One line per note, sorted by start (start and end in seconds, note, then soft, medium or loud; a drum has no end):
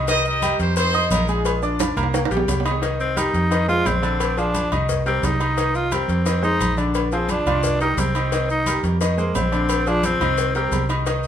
0.00 0.54 C2 loud
0.08 0.36 D#3 medium
0.08 0.36 D#4 medium
0.08 0.25 G4 medium
0.08 0.25 A#4 medium
0.08 0.36 D#5 medium
0.08 0.24 D#5 loud
0.08 cowbell loud
0.08 high conga soft
0.08 low agogo medium
0.08 maracas medium
0.25 0.74 G4 medium
0.25 0.74 A#4 medium
0.25 0.58 D#5 loud
0.25 high conga soft
0.25 maracas soft
0.42 0.71 G3 medium
0.42 0.71 G4 medium
0.42 0.71 G5 medium
0.42 cowbell medium
0.42 high conga medium
0.42 low agogo loud
0.42 maracas medium
0.59 1.07 F2 medium
0.59 0.76 C5 medium
0.59 cowbell medium
0.59 high conga soft
0.59 maracas soft
0.76 0.91 C4 medium
0.76 1.42 D#4 medium
0.76 1.29 G#4 medium
0.76 0.91 C5 medium
0.76 1.09 C5 loud
0.76 0.91 C6 medium
0.76 cowbell loud
0.76 high conga soft
0.76 low agogo medium
0.76 maracas medium
0.94 1.22 D#4 medium
0.94 1.22 D#5 medium
0.94 1.23 D#6 medium
0.94 high conga soft
0.94 maracas soft
1.11 1.91 A#1 loud
1.11 1.28 A#4 medium
1.11 cowbell medium
1.11 high conga medium
1.11 low timbale medium
1.11 low agogo loud
1.11 maracas medium
1.28 1.57 G#3 medium
1.28 1.94 D4 medium
1.28 1.94 F4 medium
1.28 1.57 G#4 medium
1.28 1.61 G#4 medium
1.28 1.57 G#5 medium
1.28 high conga soft
1.28 low agogo medium
1.28 maracas soft
1.45 cowbell loud
1.45 high conga soft
1.45 low agogo loud
1.45 maracas medium
1.62 1.91 D4 medium
1.62 1.91 D5 medium
1.62 1.91 D6 medium
1.62 high conga soft
1.62 maracas soft
1.80 cowbell medium
1.80 high conga loud
1.80 high timbale loud
1.80 low agogo medium
1.80 maracas medium
1.97 2.29 C2 medium
1.97 2.25 A#3 medium
1.97 2.25 A#4 medium
1.97 2.25 A#5 medium
1.97 high conga soft
1.97 low conga medium
1.97 low agogo loud
1.97 maracas soft
2.03 high timbale medium
2.14 cowbell loud
2.14 high conga soft
2.14 high timbale loud
2.14 maracas medium
2.25 high timbale loud
2.31 2.47 A#1 medium
2.31 2.59 G3 medium
2.31 2.60 G4 medium
2.31 2.60 G5 medium
2.31 cowbell medium
2.31 high conga soft
2.31 maracas soft
2.37 low timbale loud
2.48 3.28 C2 medium
2.48 cowbell medium
2.48 high conga medium
2.48 low timbale medium
2.48 low agogo medium
2.48 maracas medium
2.60 low timbale medium
2.65 2.79 D#3 medium
2.65 2.80 D#4 medium
2.65 2.80 D#5 medium
2.65 cowbell medium
2.65 high conga soft
2.65 low agogo loud
2.65 maracas soft
2.71 low timbale medium
2.82 3.10 D#3 medium
2.82 3.11 D#4 medium
2.82 3.11 D#5 medium
2.82 cowbell loud
2.82 high conga soft
2.82 low agogo medium
2.82 maracas medium
3.00 3.19 C4 medium
3.00 high conga soft
3.00 maracas soft
3.16 3.45 G3 medium
3.16 3.68 D#4 medium
3.16 3.45 G4 medium
3.16 3.45 A#4 medium
3.16 cowbell medium
3.16 high conga medium
3.16 low agogo loud
3.16 maracas medium
3.34 3.82 F2 loud
3.34 cowbell medium
3.34 high conga soft
3.34 maracas soft
3.51 3.65 D#3 medium
3.51 3.65 D#4 medium
3.51 3.66 D#5 medium
3.51 cowbell loud
3.51 high conga soft
3.51 low agogo medium
3.51 maracas medium
3.68 3.96 G#3 medium
3.68 3.88 F4 loud
3.68 3.97 G#4 medium
3.68 3.97 C5 medium
3.68 high conga soft
3.68 maracas soft
3.85 4.66 A#1 loud
3.85 4.40 C4 medium
3.85 cowbell medium
3.85 high conga medium
3.85 low timbale medium
3.85 low agogo loud
3.85 maracas medium
4.02 4.31 D3 medium
4.02 4.31 D4 medium
4.02 4.31 D5 medium
4.02 low agogo medium
4.02 maracas soft
4.20 cowbell loud
4.20 high conga soft
4.20 low agogo loud
4.20 maracas medium
4.37 4.66 F3 medium
4.37 4.72 D4 medium
4.37 4.66 F4 medium
4.37 4.66 G#4 medium
4.37 high conga soft
4.37 maracas soft
4.54 cowbell medium
4.54 high conga medium
4.54 low agogo medium
4.54 maracas medium
4.72 5.20 C2 loud
4.72 5.00 D#3 medium
4.72 5.00 D#4 medium
4.72 5.00 D#5 medium
4.72 high conga soft
4.72 low conga medium
4.72 low agogo loud
4.72 maracas soft
4.89 cowbell loud
4.89 high conga soft
4.89 low conga medium
4.89 maracas medium
5.06 5.34 G3 medium
5.06 5.26 C4 medium
5.06 5.34 G4 medium
5.06 5.35 A#4 medium
5.06 cowbell medium
5.06 high conga soft
5.06 maracas soft
5.23 6.03 C2 medium
5.23 5.77 D#4 medium
5.23 cowbell medium
5.23 high conga medium
5.23 low timbale medium
5.23 low agogo medium
5.23 maracas medium
5.40 5.54 D#3 medium
5.40 5.54 D#4 medium
5.40 5.55 D#5 medium
5.40 cowbell medium
5.40 high conga soft
5.40 low agogo loud
5.40 maracas soft
5.57 5.86 D#3 medium
5.57 5.86 D#4 medium
5.57 5.86 D#5 medium
5.57 cowbell loud
5.57 high conga soft
5.57 low agogo medium
5.57 maracas medium
5.75 5.95 F4 loud
5.75 high conga soft
5.75 maracas soft
5.92 6.20 G3 medium
5.92 6.44 C4 medium
5.92 6.20 G4 medium
5.92 6.20 A#4 medium
5.92 cowbell medium
5.92 high conga medium
5.92 low agogo loud
5.92 maracas medium
6.08 6.57 F2 medium
6.08 cowbell medium
6.08 maracas soft
6.26 6.40 D#3 medium
6.26 6.40 D#4 medium
6.26 6.40 D#5 medium
6.26 cowbell loud
6.26 high conga soft
6.26 low agogo medium
6.26 maracas medium
6.42 6.71 G#3 medium
6.42 6.76 D#4 loud
6.42 6.71 G#4 medium
6.42 6.71 C5 medium
6.42 high conga soft
6.42 maracas soft
6.60 7.41 A#1 medium
6.60 cowbell medium
6.60 high conga medium
6.60 low agogo loud
6.60 maracas medium
6.77 7.06 D3 medium
6.77 7.06 D4 medium
6.77 7.06 D5 medium
6.77 high conga soft
6.77 low agogo medium
6.77 maracas soft
6.94 cowbell loud
6.94 high conga soft
6.94 low agogo loud
6.94 maracas medium
7.12 7.41 F3 medium
7.12 7.32 C4 medium
7.12 7.41 F4 medium
7.12 7.41 G#4 medium
7.12 high conga soft
7.12 maracas soft
7.29 7.81 D4 loud
7.29 cowbell medium
7.29 high conga medium
7.29 low agogo medium
7.29 maracas medium
7.46 7.94 C2 medium
7.46 7.75 D#3 medium
7.46 7.75 F4 loud
7.46 7.75 D5 medium
7.46 high conga soft
7.46 low conga medium
7.46 low agogo loud
7.46 maracas soft
7.63 cowbell loud
7.63 high conga soft
7.63 low conga medium
7.63 maracas medium
7.80 8.09 G3 medium
7.80 8.01 D#4 loud
7.80 8.10 G4 medium
7.80 8.10 A#4 medium
7.80 cowbell medium
7.80 high conga soft
7.80 maracas soft
7.97 8.78 C2 loud
7.97 8.50 C4 medium
7.97 cowbell medium
7.97 high conga medium
7.97 low timbale medium
7.97 low agogo medium
7.97 maracas medium
8.15 8.29 D#3 medium
8.15 8.30 D#4 medium
8.15 8.30 D#5 medium
8.15 cowbell medium
8.15 low agogo loud
8.15 maracas soft
8.32 8.61 D#3 medium
8.32 8.61 D#4 medium
8.32 8.61 D#5 medium
8.32 cowbell loud
8.32 high conga soft
8.32 low agogo medium
8.32 maracas medium
8.49 8.82 D#4 medium
8.49 high conga soft
8.49 maracas soft
8.66 8.95 G3 medium
8.66 8.96 G4 medium
8.66 8.96 A#4 medium
8.66 cowbell medium
8.66 high conga medium
8.66 low agogo loud
8.66 maracas medium
8.83 9.31 F2 loud
8.83 cowbell medium
8.83 high conga soft
8.83 maracas soft
9.01 9.15 D#3 medium
9.01 9.15 D#4 medium
9.01 9.15 D#5 medium
9.01 cowbell loud
9.01 high conga soft
9.01 low agogo medium
9.01 maracas medium
9.17 9.46 G#3 medium
9.17 9.37 A#3 medium
9.17 9.46 G#4 medium
9.17 9.46 C5 medium
9.17 high conga soft
9.17 maracas soft
9.35 10.15 A#1 loud
9.35 9.89 C4 medium
9.35 cowbell medium
9.35 high conga medium
9.35 low timbale medium
9.35 low agogo loud
9.35 maracas medium
9.52 9.80 D3 medium
9.52 9.80 D4 medium
9.52 9.81 D5 medium
9.52 high conga soft
9.52 low agogo medium
9.52 maracas soft
9.69 cowbell loud
9.69 high conga soft
9.69 low agogo loud
9.69 maracas medium
9.87 10.15 F3 medium
9.87 10.07 D4 loud
9.87 10.15 F4 medium
9.87 10.15 G#4 medium
9.87 high conga soft
9.87 maracas soft
10.03 10.56 C4 loud
10.03 cowbell medium
10.03 high conga loud
10.03 low agogo medium
10.03 maracas medium
10.20 10.68 C2 medium
10.20 10.49 D#3 loud
10.20 10.49 D#4 loud
10.20 10.50 D#5 medium
10.20 high conga soft
10.20 low conga medium
10.20 low agogo loud
10.20 maracas soft
10.38 cowbell loud
10.38 high conga soft
10.38 maracas medium
10.55 10.83 G3 medium
10.55 10.88 C4 medium
10.55 10.84 G4 medium
10.55 10.84 A#4 medium
10.55 cowbell medium
10.55 high conga soft
10.55 maracas soft
10.72 11.27 C2 medium
10.72 cowbell medium
10.72 high conga medium
10.72 low timbale medium
10.72 low agogo medium
10.72 maracas medium
10.89 11.03 D#3 medium
10.89 11.04 D#4 medium
10.89 11.04 D#5 medium
10.89 cowbell medium
10.89 low agogo loud
10.89 maracas soft
11.06 11.27 D#3 medium
11.06 11.27 D#4 medium
11.06 11.27 D#5 medium
11.06 cowbell loud
11.06 high conga soft
11.06 low agogo medium
11.06 maracas medium
11.23 high conga soft
11.23 maracas soft